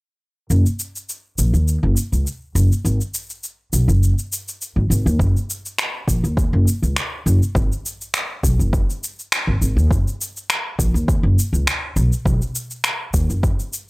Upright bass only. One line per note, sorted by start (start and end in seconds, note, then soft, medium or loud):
0.50 0.62 F#1 medium
1.38 1.51 A#1 medium
1.54 1.77 D#2 medium
1.83 1.94 F#1 medium
2.12 2.23 C#2 medium
2.55 2.68 F#1 medium
2.85 2.97 G#1 medium
3.73 3.86 B1 medium
3.88 4.12 F#1 medium
4.76 4.88 G#1 medium
4.90 5.03 G#1 medium
5.06 5.17 D#2 medium
5.19 5.32 F#1 medium
6.08 6.21 A#1 medium
6.24 6.47 D#2 medium
6.53 6.64 F#1 medium
6.82 6.94 C#2 medium
7.26 7.39 F#1 medium
7.55 7.68 G#1 medium
8.43 8.56 B1 medium
8.59 8.82 F#1 medium
9.47 9.59 G#1 medium
9.61 9.74 G#1 medium
9.77 9.88 D#2 medium
9.90 10.03 F#1 medium
10.79 10.91 A#1 medium
10.94 11.18 D#2 medium
11.23 11.35 F#1 medium
11.53 11.64 C#2 medium
11.96 12.09 B1 medium
12.25 12.38 B1 loud
13.14 13.27 D#2 medium
13.30 13.53 F#1 medium